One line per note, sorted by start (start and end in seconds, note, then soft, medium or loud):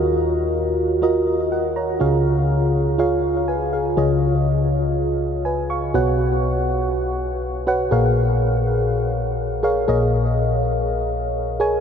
0.00 1.73 D#2 medium
0.00 1.73 D#3 medium
0.00 0.59 F4 medium
0.00 0.59 F#4 medium
0.00 0.59 A#4 medium
0.00 0.59 D#5 medium
1.02 1.69 F4 medium
1.02 1.69 F#4 medium
1.02 1.51 A#4 medium
1.02 1.52 D#5 medium
1.52 1.76 A#4 soft
1.52 1.75 F#5 medium
1.76 2.00 C#5 medium
1.76 2.23 A#5 medium
2.00 3.94 C#2 medium
2.00 3.94 C#3 medium
2.00 2.67 F4 medium
2.00 2.67 G#4 medium
2.00 2.68 C#5 medium
2.00 2.68 F5 medium
2.98 3.65 F4 medium
2.98 3.48 G#4 medium
2.98 3.49 C#5 medium
2.98 3.49 F5 medium
3.48 3.72 B4 medium
3.48 3.72 G#5 medium
3.73 3.96 G#4 soft
3.73 4.20 F5 medium
3.97 5.91 C#2 medium
3.97 5.90 C#3 medium
3.97 4.64 F4 medium
3.97 4.64 G#4 medium
3.97 4.64 C#5 medium
3.97 4.65 D#5 medium
5.45 5.69 B4 medium
5.45 5.69 G#5 medium
5.70 6.17 F5 medium
5.70 6.17 C#6 medium
5.94 7.87 B1 medium
5.94 7.87 B2 medium
5.94 6.61 F#4 medium
5.94 6.61 B4 medium
5.94 6.61 C#5 medium
5.94 6.61 F#5 medium
7.67 7.84 F#4 medium
7.67 7.84 B4 medium
7.67 7.85 C#5 medium
7.67 7.85 F#5 medium
7.91 9.84 A#1 medium
7.91 9.84 A#2 medium
7.91 8.58 G#4 medium
7.91 8.58 A#4 medium
7.91 8.58 C#5 medium
7.91 8.58 F5 medium
9.63 9.81 G#4 medium
9.63 9.81 A#4 medium
9.63 9.81 C#5 medium
9.63 9.81 F5 medium
9.88 11.80 A#1 medium
9.88 11.80 A#2 medium
9.88 10.54 G#4 medium
9.88 10.54 A#4 medium
9.88 10.55 C#5 medium
9.88 10.55 D#5 medium
11.60 11.77 G#4 medium
11.60 11.77 A#4 medium
11.60 11.78 C#5 medium
11.60 11.78 G#5 medium